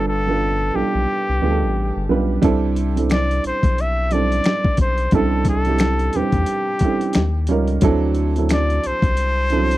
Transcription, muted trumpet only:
0.08 A4
0.76 G4
3.13 D5
3.47 C5
3.81 E5
4.12 D5
4.81 C5
5.14 A4
5.49 A4
6.16 G4
8.53 D5
8.87 C5

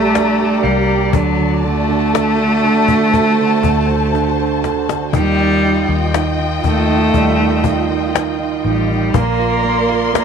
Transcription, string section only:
Already playing: G4 D5 A#5
1.13 F#4 A5
3.13 C5
5.13 F4 D#5 G5
9.14 A#4 D5 C6

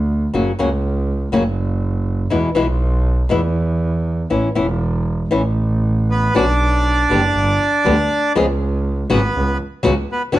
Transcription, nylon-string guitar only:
0.34 C#3 F#3 A#3 C#4 F#4
0.59 C#3 F#3 A#3 C#4 F#4
1.32 C#3 F#3 A#3 C#4 F#4
2.30 B2 E3 G#3 B3 E4
2.55 B2 E3 G#3 B3 E4
3.29 B2 E3 G#3 B3 E4
4.30 E3 B3 C#4 E4
4.55 E3 B3 C#4 E4
5.31 E3 B3 C#4 E4
6.34 B2 D3 B3 C#4 F#4
7.10 D3 G3 B3 G4
7.85 D3 G3 B3 G4
8.35 C#3 F3 G#3 B3 G#4
9.10 C#3 F#3 B3 C#4 F#4
9.83 C#3 F#3 B3 C#4 F#4
10.32 D3 B3 C#4 F#4

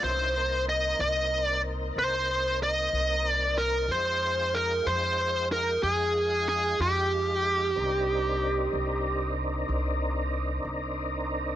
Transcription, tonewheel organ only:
0.02 C#4 D#4 E4 A#4
0.36 A#3 C4 D#4 A#4
3.88 G#3 D#4 F4 G5
7.76 C4 D4 D#4 A#4

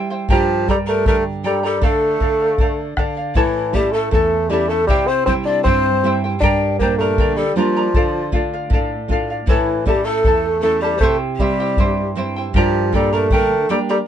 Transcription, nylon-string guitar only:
Already playing: G3
0.29 G2
0.68 G3
1.06 D3
1.44 G3
1.81 D3
2.20 D3
2.58 D3
2.97 D3
3.35 A2
3.73 A3 C#4 E4
4.11 E2
4.50 A3 C#4 E4
4.89 C3
5.26 G3 C4 E4
5.65 G2
6.03 G3 C4 E4
6.42 G2
6.80 A#2 G3 D4
7.18 D3
7.56 G3 A#3 D4
7.95 D3
8.32 A3 D4 F4
8.70 A2
9.08 A3 D4 F4
9.47 A2
9.86 A3 C#4 E4
10.25 E2
10.62 A3 C#4 E4
11.01 C3
11.39 G3 C4 E4
11.78 G2
12.15 G3 C4 E4
12.54 G2
12.92 A#2 G3 D4
13.31 D3
13.69 G3 A#3 D4

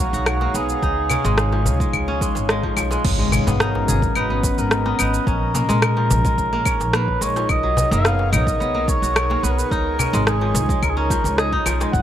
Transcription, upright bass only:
0.13 B1
0.54 B1
0.83 C#2
1.25 G#1
1.66 C#2
1.94 C#2
2.36 G#1
2.77 B1
3.04 G#1
3.47 G#2
3.88 G#1
4.16 G#1
4.58 G#1
5.00 G#1
5.27 A#1
5.69 A#2
6.11 A#1
6.38 A#1
6.80 A#1
7.21 A#1
7.49 B1
7.91 F#1
8.33 B1
8.60 B1
9.02 B1
9.43 B1
9.72 C#2
10.13 G#1
10.55 C#2
10.82 C#2
11.24 C#2
11.66 B1
11.93 G#1

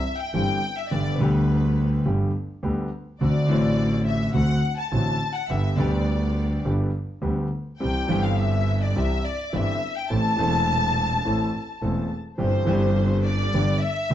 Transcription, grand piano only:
0.34 G1 G2 E3 G3 C4 G4
0.91 G1 G2 D3 G3 B3 G4
1.20 D2 D3 G3 B3 G4
2.05 G1 G2 D3 G3 B3 G4
2.63 D2 D3 G3 B3 G4
3.21 D2 D3 A3 C4 F#4
3.47 A1 A2 D3 A3 C4
3.51 F#4
4.34 D2 D3 A3 C4 F#4
4.92 A1 A2 D3 A3 C4 F#4
5.50 G1 G2 D3 G3 B3 G4
5.77 D2 D3 G3 B3 G4
6.65 G1 G2 D3 G3 B3 G4
7.22 D2 D3 G3 B3 G4
7.80 C2 C3 E3 G3 C4 G4
8.07 G1 G2 E3 G3 C4 G4
8.96 C2 C3 E3 G3 C4 G4
9.53 G1 G2 E3 G3 C4 G4
10.10 A1 A2 E3 A3 C4 A4
10.37 E1 E2 E3 A3 C4
10.41 A4
11.25 A1 A2 E3 A3 C4 A4
11.82 E1 E2 E3 A3 C4 A4
12.38 G1 G2 E3 G3 C4 G4
12.65 G1 G2 E3 G3 C4 G4
13.54 G1 G2 D3 G3 B3 G4
14.10 D2 D3 G3 B3 G4

